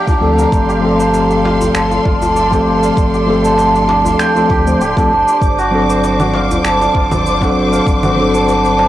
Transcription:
Already playing: santur F4 G4 A#4 D5 F5 G5, string section G4 F5 G5, synth texture D5
0.07 santur D4, kick, djembe tone, djembe bass, cabasa
0.20 sub bass D2, tine electric piano F3 A3 C4 A4, djembe tone
0.38 santur A#4, djembe tone, cabasa
0.52 sub bass G1, string section A4 C6, kick, cabasa
0.69 santur G4, cabasa
0.81 tine electric piano F3 A3 C4 A4
0.99 santur C5, cabasa
1.14 djembe slap, cabasa
1.30 santur G4, cabasa
1.44 santur F5, djembe slap, djembe tone
1.61 djembe bass, cabasa
1.75 sub bass G1, santur A4, finger snap, cabasa
1.91 djembe tone, cabasa
2.05 sub bass G1, santur F4, kick, djembe slap
2.22 djembe tone, djembe bass, cabasa
2.36 santur D5, cabasa
2.51 tine electric piano F3 A3 C4 A4, santur G4, kick, djembe slap, cabasa
2.66 sub bass G1
2.83 santur F5, djembe tone, cabasa
2.97 sub bass G1, kick, cabasa
3.14 santur G4, cabasa
3.26 tine electric piano F3 A3 C4 A4
3.44 santur A4, cabasa
3.58 djembe slap, cabasa
3.75 santur D4, cabasa
3.88 santur D4, djembe slap, djembe tone
4.05 djembe bass, cabasa
4.19 santur G5, finger snap, cabasa
4.35 tine electric piano F3 A3 C4 A4, djembe tone, cabasa
4.50 sub bass D2, santur G4, kick, djembe bass
4.66 tine electric piano F3 A3 C4 C5, cabasa
4.80 sub bass D1, santur G4, cabasa
4.97 tine electric piano F3 A3 C4 A4, santur D4, kick, djembe tone, djembe bass, cabasa
5.11 sub bass G1, djembe tone
5.28 santur D4, djembe tone, cabasa
5.41 sub bass G1, string section C5 D6, kick, cabasa
5.59 santur F#4, cabasa
5.71 tine electric piano F#3 C4 D4 A4
5.89 santur C5, cabasa
6.04 djembe slap, cabasa
6.20 santur F#4, low conga, cabasa
6.34 santur F5, djembe slap, djembe tone
6.51 djembe bass, cabasa
6.64 sub bass G1, santur A4, finger snap, cabasa
6.81 djembe tone, cabasa
6.95 sub bass G1, santur F4, kick, djembe slap
7.11 djembe tone, low conga, djembe bass, cabasa
7.26 santur D5, cabasa
7.41 tine electric piano F#3 C4 D4 A4, santur F#4, kick, djembe slap, cabasa
7.56 sub bass G1
7.73 santur F5, djembe tone, cabasa
7.87 sub bass G1, kick, cabasa
8.03 santur F#4, low conga, cabasa
8.16 tine electric piano F#3 C4 D4 A4
8.34 santur A4, cabasa
8.48 djembe slap, cabasa
8.64 santur D4, cabasa
8.79 santur D4, djembe slap, djembe tone

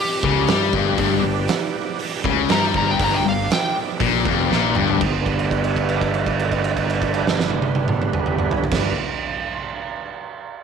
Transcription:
Already playing: tonewheel organ G4 B4 D5
0.00 electric slide guitar G4
0.23 fingered electric bass C#2, distorted electric guitar C#3, kick
0.47 fingered electric bass G2, distorted electric guitar G3, snare, open hi-hat
0.62 snare
0.73 fingered electric bass G1, distorted electric guitar G2, kick
0.98 fingered electric bass G1, distorted electric guitar G2, tonewheel organ G4 B4 D5, kick, open hi-hat
1.24 fingered electric bass G1, distorted electric guitar G2
1.48 snare, open hi-hat
1.99 open hi-hat
2.24 fingered electric bass C#2, distorted electric guitar C#3, kick
2.49 fingered electric bass G2, distorted electric guitar G3, electric slide guitar A#5, snare, open hi-hat
2.63 snare
2.74 fingered electric bass G1, distorted electric guitar G2, electric slide guitar A#5, kick
2.91 electric slide guitar G5
2.99 fingered electric bass G1, distorted electric guitar G2, kick, open hi-hat
3.04 electric slide guitar A#5
3.14 electric slide guitar G5
3.25 fingered electric bass G1, distorted electric guitar G2, electric slide guitar F5
3.50 electric slide guitar G5, snare, open hi-hat
4.00 fingered electric bass A#1, distorted electric guitar A#2, kick, open hi-hat
4.25 fingered electric bass F1, distorted electric guitar F2, kick
4.50 fingered electric bass A#1, distorted electric guitar A#2, snare
4.75 fingered electric bass G1, distorted electric guitar G2, mid tom
4.88 floor tom
5.01 fingered electric bass G1, tonewheel organ G#3 C4 D#4 C5, kick, crash
5.21 tonewheel organ G3 B3 D4 B4
5.26 kick, crash
5.39 crash
5.51 kick, crash
5.64 crash
5.76 kick, crash
5.89 crash
6.01 kick, crash
6.14 crash
6.26 kick, crash
6.39 crash
6.52 kick, crash
6.64 crash
6.77 kick, crash
6.90 crash
7.02 kick, crash
7.14 crash
7.27 snare
7.39 snare
7.50 high tom
7.62 high tom
7.75 high tom
7.88 mid tom
8.02 mid tom
8.13 mid tom
8.26 mid tom
8.38 mid tom
8.51 floor tom
8.64 floor tom
8.71 fingered electric bass G1, tonewheel organ G3 B3 D4 B4, kick, snare, crash

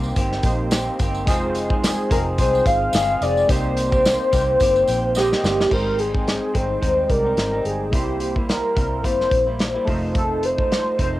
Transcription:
Already playing: fingered electric bass C2, clean electric guitar D#3 A#3 C4 G4, synth keys A#3 D#4 G4 C5
0.03 tambourine
0.16 fingered electric bass G1, clean electric guitar D#3 A#3 C4 G4, kick, closed hi-hat, tambourine
0.32 snare
0.43 fingered electric bass A#1, synth keys A#3 D#4 G4 C5, kick, closed hi-hat, tambourine
0.71 clean electric guitar D#3 A#3 C4 G4, snare, closed hi-hat, tambourine
0.99 fingered electric bass G1, clean electric guitar D#3 A#3 C4 G4, kick, closed hi-hat, tambourine
1.15 tambourine
1.25 fingered electric bass F1, clean electric guitar F2 C3 D#3 G#3 C4 G#4, synth keys G#3 D#4 F4, kick, closed hi-hat, tambourine
1.30 synth keys C5
1.55 closed hi-hat, tambourine
1.70 clean electric guitar D#3 G#3 C4 G#4, kick
1.84 soft synth lead G#4, snare, closed hi-hat, tambourine
2.10 fingered electric bass F1, clean electric guitar D#3 G#3 C4 G#4, soft synth lead A#4, kick, closed hi-hat, tambourine
2.38 fingered electric bass C2, clean electric guitar D#3 G#3 C4 G#4, soft synth lead C5, kick, closed hi-hat, tambourine
2.55 tambourine
2.66 fingered electric bass G#1, soft synth lead F5, kick, closed hi-hat, tambourine
2.93 fingered electric bass G1, clean electric guitar D#3 G#3 C4 G#4, snare, closed hi-hat, tambourine
3.21 fingered electric bass F1, clean electric guitar D#3 G#3 C4 G#4, soft synth lead D5, closed hi-hat, tambourine
3.37 tambourine
3.47 fingered electric bass C2, clean electric guitar C3 D#3 A#3 C4 G4, synth keys A#3 D#4 G4, soft synth lead C5, kick, closed hi-hat, tambourine
3.52 synth keys C5
3.77 closed hi-hat, tambourine
3.91 clean electric guitar A#3 C4 G4, kick, tambourine
4.05 snare, closed hi-hat, tambourine
4.32 fingered electric bass C2, clean electric guitar D#3 A#3 C4 G4, kick, closed hi-hat, tambourine
4.60 fingered electric bass G1, clean electric guitar D#3 A#3 C4 G4, kick, closed hi-hat, tambourine
4.76 tambourine
4.88 fingered electric bass A#1, synth keys G5, closed hi-hat, tambourine
5.15 clean electric guitar D#3 A#3 C4 G4, soft synth lead G4, synth keys D#5, snare, tambourine
5.32 snare
5.43 fingered electric bass G1, clean electric guitar D#3 A#3 C4 G4, snare, tambourine
5.60 snare
5.69 fingered electric bass G#1, clean electric guitar G#2 D#3 G3 C4 D#4, synth keys G#3 D#4 G5, soft synth lead A#4, kick, crash
5.74 synth keys C5
5.99 soft synth lead G#4, closed hi-hat
6.13 clean electric guitar C4 D#4, kick
6.28 snare, closed hi-hat
6.54 fingered electric bass G#1, clean electric guitar D#3 G3 C4 D#4, soft synth lead C5, kick, closed hi-hat
6.81 fingered electric bass D#2, clean electric guitar G#2 D#3 G3 C4 D#4, kick, closed hi-hat
7.09 fingered electric bass C2, synth keys G#3 D#4 G4 D5, soft synth lead A#4, kick, closed hi-hat
7.24 clean electric guitar G3 C4 D#4
7.37 fingered electric bass G#1, snare, closed hi-hat
7.52 clean electric guitar G3 C4 D#4
7.65 fingered electric bass G1, soft synth lead G#4, closed hi-hat
7.90 fingered electric bass C2, clean electric guitar C3 G3 A#3 E4, synth keys A#3 E4 G4, soft synth lead G4, kick, closed hi-hat
7.95 synth keys C5
8.20 soft synth lead G4, closed hi-hat
8.35 clean electric guitar G3 A#3 E4, kick
8.49 soft synth lead A#4, snare, closed hi-hat
8.75 fingered electric bass C2, clean electric guitar C3 G3 A#3 E4, kick, closed hi-hat
9.03 fingered electric bass G1, clean electric guitar C3 G3 A#3 E4, soft synth lead C5, kick, closed hi-hat
9.21 snare
9.31 fingered electric bass A#1, kick, closed hi-hat
9.46 clean electric guitar G3 A#3 E4
9.59 snare, closed hi-hat
9.74 clean electric guitar G3 A#3 E4
9.85 fingered electric bass F1, clean electric guitar F2 C3 D#3 A3 D#4, synth keys A3 D#4 F4, kick, open hi-hat
9.90 synth keys C5
10.15 soft synth lead A4, kick, closed hi-hat
10.43 soft synth lead C5, closed hi-hat
10.58 clean electric guitar D#3 A3 D#4, kick
10.72 snare, closed hi-hat
10.98 fingered electric bass F1, clean electric guitar C3 D#3 A3 D#4, soft synth lead C5, kick, closed hi-hat

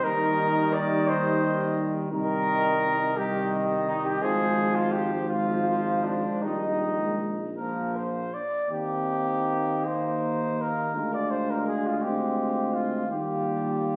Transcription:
0.02 tuba D#2, trombone D#3, euphonium G3, flugelhorn A#4, cornet D#5
0.73 flugelhorn D5
1.08 flugelhorn C5
2.11 tuba C2, trombone D#3, euphonium G3, flugelhorn A#4, cornet D#5
3.17 trombone D#3, euphonium G3, flugelhorn G4, cornet D#5
3.88 flugelhorn D#4
4.05 flugelhorn G4
4.22 tuba G#1, trombone F3, euphonium G#3, flugelhorn G#4, cornet C5
4.75 flugelhorn F4
4.92 flugelhorn G4
5.29 trombone F3, euphonium G#3, flugelhorn F4, cornet C5
6.04 flugelhorn D4
6.41 tuba A#1, trombone D#3, euphonium G3, flugelhorn D#4, cornet D#5
7.00 euphonium G#3
7.57 trombone F3, euphonium A#3, cornet A#4
7.96 cornet C5
8.34 cornet D5
8.68 tuba D#2, trombone A#3, euphonium C4, flugelhorn D#4, cornet G4
9.85 euphonium A#3, cornet C5
10.61 cornet A#4
10.94 tuba D2, trombone G#3, euphonium D4, flugelhorn F4
11.14 cornet D5
11.31 cornet C5
11.50 cornet A#4
11.67 cornet G#4
11.87 cornet F4
12.02 euphonium C4, cornet G4
12.74 cornet F4
13.08 tuba D#2, trombone G3, euphonium A#3, cornet G4

